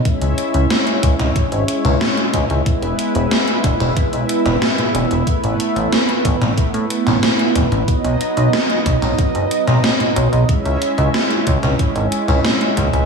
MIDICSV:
0, 0, Header, 1, 4, 480
1, 0, Start_track
1, 0, Tempo, 652174
1, 40, Time_signature, 4, 2, 24, 8
1, 9608, End_track
2, 0, Start_track
2, 0, Title_t, "Analog synth pad"
2, 0, Program_c, 0, 89
2, 37, Note_on_c, 0, 56, 85
2, 37, Note_on_c, 0, 61, 75
2, 37, Note_on_c, 0, 64, 74
2, 37, Note_on_c, 0, 73, 74
2, 37, Note_on_c, 0, 76, 87
2, 1939, Note_off_c, 0, 61, 0
2, 1939, Note_off_c, 0, 64, 0
2, 1939, Note_off_c, 0, 73, 0
2, 1958, Note_on_c, 0, 59, 77
2, 1958, Note_on_c, 0, 64, 73
2, 1958, Note_on_c, 0, 71, 78
2, 3849, Note_off_c, 0, 56, 0
2, 3860, Note_off_c, 0, 71, 0
2, 3878, Note_on_c, 0, 71, 79
2, 3879, Note_on_c, 0, 57, 80
2, 5769, Note_off_c, 0, 64, 0
2, 5769, Note_off_c, 0, 76, 0
2, 5780, Note_off_c, 0, 57, 0
2, 5800, Note_on_c, 0, 54, 79
2, 5801, Note_on_c, 0, 63, 73
2, 5801, Note_on_c, 0, 75, 90
2, 7690, Note_off_c, 0, 59, 0
2, 7690, Note_off_c, 0, 71, 0
2, 7701, Note_off_c, 0, 54, 0
2, 7701, Note_off_c, 0, 63, 0
2, 7701, Note_off_c, 0, 75, 0
2, 7717, Note_on_c, 0, 61, 76
2, 7717, Note_on_c, 0, 64, 78
2, 7717, Note_on_c, 0, 73, 76
2, 7718, Note_on_c, 0, 56, 85
2, 7718, Note_on_c, 0, 76, 91
2, 9608, Note_off_c, 0, 56, 0
2, 9608, Note_off_c, 0, 61, 0
2, 9608, Note_off_c, 0, 64, 0
2, 9608, Note_off_c, 0, 73, 0
2, 9608, Note_off_c, 0, 76, 0
2, 9608, End_track
3, 0, Start_track
3, 0, Title_t, "Analog synth bass"
3, 0, Program_c, 1, 38
3, 160, Note_on_c, 1, 37, 70
3, 247, Note_off_c, 1, 37, 0
3, 400, Note_on_c, 1, 37, 78
3, 487, Note_off_c, 1, 37, 0
3, 759, Note_on_c, 1, 37, 96
3, 847, Note_off_c, 1, 37, 0
3, 880, Note_on_c, 1, 37, 74
3, 967, Note_off_c, 1, 37, 0
3, 1120, Note_on_c, 1, 32, 74
3, 1207, Note_off_c, 1, 32, 0
3, 1360, Note_on_c, 1, 37, 85
3, 1447, Note_off_c, 1, 37, 0
3, 1720, Note_on_c, 1, 37, 94
3, 1807, Note_off_c, 1, 37, 0
3, 1840, Note_on_c, 1, 37, 82
3, 1927, Note_off_c, 1, 37, 0
3, 2080, Note_on_c, 1, 28, 72
3, 2167, Note_off_c, 1, 28, 0
3, 2320, Note_on_c, 1, 28, 82
3, 2407, Note_off_c, 1, 28, 0
3, 2679, Note_on_c, 1, 28, 95
3, 2766, Note_off_c, 1, 28, 0
3, 2799, Note_on_c, 1, 28, 73
3, 2887, Note_off_c, 1, 28, 0
3, 3039, Note_on_c, 1, 35, 75
3, 3127, Note_off_c, 1, 35, 0
3, 3281, Note_on_c, 1, 28, 83
3, 3367, Note_off_c, 1, 28, 0
3, 3640, Note_on_c, 1, 28, 93
3, 3727, Note_off_c, 1, 28, 0
3, 3759, Note_on_c, 1, 28, 81
3, 3847, Note_off_c, 1, 28, 0
3, 4000, Note_on_c, 1, 33, 74
3, 4087, Note_off_c, 1, 33, 0
3, 4239, Note_on_c, 1, 33, 82
3, 4327, Note_off_c, 1, 33, 0
3, 4599, Note_on_c, 1, 33, 97
3, 4687, Note_off_c, 1, 33, 0
3, 4719, Note_on_c, 1, 33, 76
3, 4807, Note_off_c, 1, 33, 0
3, 4960, Note_on_c, 1, 45, 75
3, 5047, Note_off_c, 1, 45, 0
3, 5200, Note_on_c, 1, 33, 84
3, 5287, Note_off_c, 1, 33, 0
3, 5560, Note_on_c, 1, 28, 95
3, 5647, Note_off_c, 1, 28, 0
3, 5680, Note_on_c, 1, 33, 79
3, 5767, Note_off_c, 1, 33, 0
3, 5921, Note_on_c, 1, 35, 73
3, 6007, Note_off_c, 1, 35, 0
3, 6160, Note_on_c, 1, 35, 81
3, 6247, Note_off_c, 1, 35, 0
3, 6520, Note_on_c, 1, 35, 93
3, 6607, Note_off_c, 1, 35, 0
3, 6640, Note_on_c, 1, 35, 78
3, 6727, Note_off_c, 1, 35, 0
3, 6881, Note_on_c, 1, 30, 78
3, 6967, Note_off_c, 1, 30, 0
3, 7121, Note_on_c, 1, 35, 83
3, 7207, Note_off_c, 1, 35, 0
3, 7480, Note_on_c, 1, 35, 89
3, 7567, Note_off_c, 1, 35, 0
3, 7600, Note_on_c, 1, 35, 77
3, 7687, Note_off_c, 1, 35, 0
3, 7839, Note_on_c, 1, 37, 69
3, 7926, Note_off_c, 1, 37, 0
3, 8080, Note_on_c, 1, 37, 81
3, 8167, Note_off_c, 1, 37, 0
3, 8440, Note_on_c, 1, 37, 98
3, 8527, Note_off_c, 1, 37, 0
3, 8560, Note_on_c, 1, 37, 76
3, 8647, Note_off_c, 1, 37, 0
3, 8799, Note_on_c, 1, 32, 75
3, 8887, Note_off_c, 1, 32, 0
3, 9039, Note_on_c, 1, 37, 86
3, 9126, Note_off_c, 1, 37, 0
3, 9400, Note_on_c, 1, 37, 94
3, 9487, Note_off_c, 1, 37, 0
3, 9519, Note_on_c, 1, 37, 84
3, 9606, Note_off_c, 1, 37, 0
3, 9608, End_track
4, 0, Start_track
4, 0, Title_t, "Drums"
4, 39, Note_on_c, 9, 36, 113
4, 39, Note_on_c, 9, 42, 65
4, 112, Note_off_c, 9, 42, 0
4, 113, Note_off_c, 9, 36, 0
4, 158, Note_on_c, 9, 42, 41
4, 232, Note_off_c, 9, 42, 0
4, 279, Note_on_c, 9, 42, 86
4, 353, Note_off_c, 9, 42, 0
4, 399, Note_on_c, 9, 42, 41
4, 473, Note_off_c, 9, 42, 0
4, 519, Note_on_c, 9, 38, 122
4, 519, Note_on_c, 9, 42, 68
4, 592, Note_off_c, 9, 38, 0
4, 592, Note_off_c, 9, 42, 0
4, 639, Note_on_c, 9, 42, 41
4, 713, Note_off_c, 9, 42, 0
4, 759, Note_on_c, 9, 36, 111
4, 759, Note_on_c, 9, 42, 101
4, 832, Note_off_c, 9, 42, 0
4, 833, Note_off_c, 9, 36, 0
4, 879, Note_on_c, 9, 42, 43
4, 879, Note_on_c, 9, 47, 96
4, 953, Note_off_c, 9, 42, 0
4, 953, Note_off_c, 9, 47, 0
4, 999, Note_on_c, 9, 36, 117
4, 999, Note_on_c, 9, 42, 68
4, 1073, Note_off_c, 9, 36, 0
4, 1073, Note_off_c, 9, 42, 0
4, 1119, Note_on_c, 9, 42, 41
4, 1192, Note_off_c, 9, 42, 0
4, 1239, Note_on_c, 9, 42, 100
4, 1313, Note_off_c, 9, 42, 0
4, 1360, Note_on_c, 9, 42, 39
4, 1360, Note_on_c, 9, 47, 89
4, 1433, Note_off_c, 9, 42, 0
4, 1433, Note_off_c, 9, 47, 0
4, 1480, Note_on_c, 9, 38, 119
4, 1480, Note_on_c, 9, 42, 65
4, 1553, Note_off_c, 9, 38, 0
4, 1553, Note_off_c, 9, 42, 0
4, 1600, Note_on_c, 9, 42, 42
4, 1673, Note_off_c, 9, 42, 0
4, 1719, Note_on_c, 9, 36, 61
4, 1719, Note_on_c, 9, 42, 96
4, 1719, Note_on_c, 9, 47, 62
4, 1793, Note_off_c, 9, 36, 0
4, 1793, Note_off_c, 9, 42, 0
4, 1793, Note_off_c, 9, 47, 0
4, 1840, Note_on_c, 9, 42, 40
4, 1913, Note_off_c, 9, 42, 0
4, 1959, Note_on_c, 9, 36, 118
4, 1959, Note_on_c, 9, 42, 64
4, 2033, Note_off_c, 9, 36, 0
4, 2033, Note_off_c, 9, 42, 0
4, 2079, Note_on_c, 9, 42, 38
4, 2153, Note_off_c, 9, 42, 0
4, 2199, Note_on_c, 9, 42, 87
4, 2273, Note_off_c, 9, 42, 0
4, 2319, Note_on_c, 9, 42, 39
4, 2392, Note_off_c, 9, 42, 0
4, 2439, Note_on_c, 9, 38, 124
4, 2439, Note_on_c, 9, 42, 65
4, 2513, Note_off_c, 9, 38, 0
4, 2513, Note_off_c, 9, 42, 0
4, 2558, Note_on_c, 9, 42, 42
4, 2632, Note_off_c, 9, 42, 0
4, 2679, Note_on_c, 9, 36, 114
4, 2679, Note_on_c, 9, 42, 91
4, 2753, Note_off_c, 9, 36, 0
4, 2753, Note_off_c, 9, 42, 0
4, 2799, Note_on_c, 9, 42, 40
4, 2799, Note_on_c, 9, 47, 96
4, 2873, Note_off_c, 9, 42, 0
4, 2873, Note_off_c, 9, 47, 0
4, 2919, Note_on_c, 9, 36, 126
4, 2919, Note_on_c, 9, 42, 69
4, 2993, Note_off_c, 9, 36, 0
4, 2993, Note_off_c, 9, 42, 0
4, 3039, Note_on_c, 9, 42, 40
4, 3113, Note_off_c, 9, 42, 0
4, 3159, Note_on_c, 9, 42, 102
4, 3233, Note_off_c, 9, 42, 0
4, 3280, Note_on_c, 9, 42, 39
4, 3280, Note_on_c, 9, 47, 93
4, 3353, Note_off_c, 9, 42, 0
4, 3353, Note_off_c, 9, 47, 0
4, 3400, Note_on_c, 9, 38, 116
4, 3400, Note_on_c, 9, 42, 64
4, 3473, Note_off_c, 9, 38, 0
4, 3473, Note_off_c, 9, 42, 0
4, 3521, Note_on_c, 9, 42, 39
4, 3521, Note_on_c, 9, 47, 61
4, 3594, Note_off_c, 9, 42, 0
4, 3594, Note_off_c, 9, 47, 0
4, 3641, Note_on_c, 9, 42, 89
4, 3715, Note_off_c, 9, 42, 0
4, 3760, Note_on_c, 9, 42, 40
4, 3834, Note_off_c, 9, 42, 0
4, 3879, Note_on_c, 9, 36, 117
4, 3880, Note_on_c, 9, 42, 62
4, 3952, Note_off_c, 9, 36, 0
4, 3954, Note_off_c, 9, 42, 0
4, 4001, Note_on_c, 9, 42, 37
4, 4075, Note_off_c, 9, 42, 0
4, 4121, Note_on_c, 9, 42, 84
4, 4194, Note_off_c, 9, 42, 0
4, 4241, Note_on_c, 9, 42, 37
4, 4315, Note_off_c, 9, 42, 0
4, 4361, Note_on_c, 9, 38, 115
4, 4361, Note_on_c, 9, 42, 64
4, 4434, Note_off_c, 9, 38, 0
4, 4434, Note_off_c, 9, 42, 0
4, 4481, Note_on_c, 9, 42, 38
4, 4554, Note_off_c, 9, 42, 0
4, 4599, Note_on_c, 9, 36, 108
4, 4601, Note_on_c, 9, 42, 87
4, 4673, Note_off_c, 9, 36, 0
4, 4675, Note_off_c, 9, 42, 0
4, 4722, Note_on_c, 9, 42, 39
4, 4722, Note_on_c, 9, 47, 98
4, 4795, Note_off_c, 9, 42, 0
4, 4795, Note_off_c, 9, 47, 0
4, 4840, Note_on_c, 9, 36, 113
4, 4841, Note_on_c, 9, 42, 66
4, 4913, Note_off_c, 9, 36, 0
4, 4915, Note_off_c, 9, 42, 0
4, 4961, Note_on_c, 9, 42, 39
4, 5035, Note_off_c, 9, 42, 0
4, 5081, Note_on_c, 9, 42, 98
4, 5155, Note_off_c, 9, 42, 0
4, 5201, Note_on_c, 9, 38, 35
4, 5201, Note_on_c, 9, 42, 38
4, 5201, Note_on_c, 9, 47, 94
4, 5275, Note_off_c, 9, 38, 0
4, 5275, Note_off_c, 9, 42, 0
4, 5275, Note_off_c, 9, 47, 0
4, 5320, Note_on_c, 9, 38, 124
4, 5320, Note_on_c, 9, 42, 63
4, 5394, Note_off_c, 9, 38, 0
4, 5394, Note_off_c, 9, 42, 0
4, 5441, Note_on_c, 9, 42, 38
4, 5515, Note_off_c, 9, 42, 0
4, 5560, Note_on_c, 9, 36, 60
4, 5561, Note_on_c, 9, 42, 86
4, 5561, Note_on_c, 9, 47, 61
4, 5633, Note_off_c, 9, 36, 0
4, 5635, Note_off_c, 9, 42, 0
4, 5635, Note_off_c, 9, 47, 0
4, 5682, Note_on_c, 9, 42, 38
4, 5755, Note_off_c, 9, 42, 0
4, 5800, Note_on_c, 9, 36, 109
4, 5801, Note_on_c, 9, 42, 61
4, 5874, Note_off_c, 9, 36, 0
4, 5875, Note_off_c, 9, 42, 0
4, 5921, Note_on_c, 9, 42, 36
4, 5995, Note_off_c, 9, 42, 0
4, 6040, Note_on_c, 9, 42, 81
4, 6114, Note_off_c, 9, 42, 0
4, 6161, Note_on_c, 9, 42, 38
4, 6234, Note_off_c, 9, 42, 0
4, 6281, Note_on_c, 9, 38, 118
4, 6281, Note_on_c, 9, 42, 64
4, 6354, Note_off_c, 9, 38, 0
4, 6354, Note_off_c, 9, 42, 0
4, 6402, Note_on_c, 9, 42, 36
4, 6475, Note_off_c, 9, 42, 0
4, 6520, Note_on_c, 9, 36, 104
4, 6521, Note_on_c, 9, 42, 87
4, 6594, Note_off_c, 9, 36, 0
4, 6594, Note_off_c, 9, 42, 0
4, 6641, Note_on_c, 9, 42, 39
4, 6641, Note_on_c, 9, 47, 96
4, 6715, Note_off_c, 9, 42, 0
4, 6715, Note_off_c, 9, 47, 0
4, 6760, Note_on_c, 9, 36, 118
4, 6761, Note_on_c, 9, 42, 64
4, 6834, Note_off_c, 9, 36, 0
4, 6834, Note_off_c, 9, 42, 0
4, 6881, Note_on_c, 9, 42, 36
4, 6954, Note_off_c, 9, 42, 0
4, 7001, Note_on_c, 9, 42, 95
4, 7074, Note_off_c, 9, 42, 0
4, 7121, Note_on_c, 9, 42, 36
4, 7121, Note_on_c, 9, 47, 91
4, 7194, Note_off_c, 9, 42, 0
4, 7194, Note_off_c, 9, 47, 0
4, 7241, Note_on_c, 9, 38, 116
4, 7241, Note_on_c, 9, 42, 61
4, 7315, Note_off_c, 9, 38, 0
4, 7315, Note_off_c, 9, 42, 0
4, 7361, Note_on_c, 9, 42, 37
4, 7361, Note_on_c, 9, 47, 61
4, 7435, Note_off_c, 9, 42, 0
4, 7435, Note_off_c, 9, 47, 0
4, 7481, Note_on_c, 9, 42, 89
4, 7554, Note_off_c, 9, 42, 0
4, 7601, Note_on_c, 9, 42, 36
4, 7675, Note_off_c, 9, 42, 0
4, 7720, Note_on_c, 9, 36, 113
4, 7721, Note_on_c, 9, 42, 59
4, 7794, Note_off_c, 9, 36, 0
4, 7795, Note_off_c, 9, 42, 0
4, 7842, Note_on_c, 9, 42, 35
4, 7915, Note_off_c, 9, 42, 0
4, 7961, Note_on_c, 9, 42, 86
4, 8035, Note_off_c, 9, 42, 0
4, 8081, Note_on_c, 9, 42, 37
4, 8155, Note_off_c, 9, 42, 0
4, 8201, Note_on_c, 9, 38, 114
4, 8201, Note_on_c, 9, 42, 62
4, 8274, Note_off_c, 9, 38, 0
4, 8274, Note_off_c, 9, 42, 0
4, 8321, Note_on_c, 9, 42, 37
4, 8395, Note_off_c, 9, 42, 0
4, 8440, Note_on_c, 9, 36, 100
4, 8441, Note_on_c, 9, 42, 88
4, 8514, Note_off_c, 9, 36, 0
4, 8514, Note_off_c, 9, 42, 0
4, 8560, Note_on_c, 9, 42, 38
4, 8560, Note_on_c, 9, 47, 94
4, 8634, Note_off_c, 9, 42, 0
4, 8634, Note_off_c, 9, 47, 0
4, 8680, Note_on_c, 9, 36, 111
4, 8680, Note_on_c, 9, 42, 62
4, 8754, Note_off_c, 9, 36, 0
4, 8754, Note_off_c, 9, 42, 0
4, 8800, Note_on_c, 9, 42, 36
4, 8873, Note_off_c, 9, 42, 0
4, 8920, Note_on_c, 9, 42, 93
4, 8994, Note_off_c, 9, 42, 0
4, 9040, Note_on_c, 9, 42, 36
4, 9040, Note_on_c, 9, 47, 88
4, 9114, Note_off_c, 9, 42, 0
4, 9114, Note_off_c, 9, 47, 0
4, 9160, Note_on_c, 9, 38, 112
4, 9160, Note_on_c, 9, 42, 58
4, 9234, Note_off_c, 9, 38, 0
4, 9234, Note_off_c, 9, 42, 0
4, 9281, Note_on_c, 9, 42, 36
4, 9354, Note_off_c, 9, 42, 0
4, 9400, Note_on_c, 9, 36, 55
4, 9400, Note_on_c, 9, 42, 85
4, 9400, Note_on_c, 9, 47, 60
4, 9473, Note_off_c, 9, 36, 0
4, 9473, Note_off_c, 9, 42, 0
4, 9473, Note_off_c, 9, 47, 0
4, 9520, Note_on_c, 9, 42, 37
4, 9594, Note_off_c, 9, 42, 0
4, 9608, End_track
0, 0, End_of_file